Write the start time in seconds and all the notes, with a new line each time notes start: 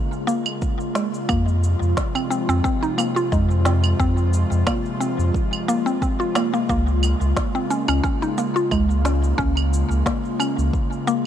Already playing: C#3 G#3 A#3 C#4 F4
0.13 cabasa
0.27 A#3, cabasa
0.46 cabasa, claves
0.62 kick, cabasa
0.80 cabasa
0.95 G#3, snare, cabasa
1.14 cabasa
1.29 F2 C3 F3 A#3, kick, cabasa, claves
1.48 cabasa
1.64 cabasa
1.82 F2, cabasa
1.97 kick, snare, cabasa
2.15 C4, cabasa, claves
2.30 C4, cabasa
2.49 F2 C4, cabasa
2.64 C4, kick, cabasa
2.83 D#4, cabasa
2.98 A#3, cabasa, claves
3.16 F4, cabasa
3.32 F2 G#3, kick, cabasa
3.51 cabasa
3.65 C4, snare, cabasa
3.84 cabasa, claves
3.99 F2 C4, kick, cabasa
4.17 cabasa
4.33 cabasa
4.52 F2, cabasa
4.67 A#3, kick, snare, cabasa, claves
4.86 cabasa
5.00 C4, cabasa
5.19 F2, cabasa
5.34 kick, cabasa
5.53 cabasa, claves
5.68 A#3, cabasa
5.86 C4, cabasa
6.02 C4, kick, cabasa
6.20 F4, cabasa
6.35 A#3, snare, cabasa, claves
6.54 A#3, cabasa
6.69 C#2 C#3 A#3, kick, cabasa
6.87 cabasa
7.03 cabasa, claves
7.21 C#2, cabasa
7.37 kick, snare, cabasa
7.55 C4, cabasa
7.70 C#4, cabasa
7.88 C#2 C#4, cabasa, claves
8.03 C#4, kick, cabasa
8.22 D#4, cabasa
8.38 A#3, cabasa
8.56 F4, cabasa
8.71 C#2 G#3, kick, cabasa, claves
8.90 cabasa
9.05 C#4, snare, cabasa
9.24 cabasa
9.38 C#2 C#4, kick, cabasa
9.57 cabasa, claves
9.73 cabasa
9.91 C#2, cabasa
10.06 A#3, kick, snare, cabasa
10.25 cabasa
10.40 C#4, cabasa, claves
10.58 C#2, cabasa
10.73 kick, cabasa
10.92 cabasa
11.07 A#3, cabasa